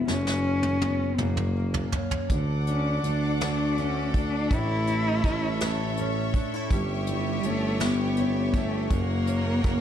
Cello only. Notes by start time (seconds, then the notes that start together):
0.08 C#4
1.18 A#3
2.69 C#4
3.06 D4
3.42 D4
3.79 C#4
4.17 D4
4.53 E4
7.08 G3
7.45 A3
7.82 B3
8.55 A3
8.92 A#3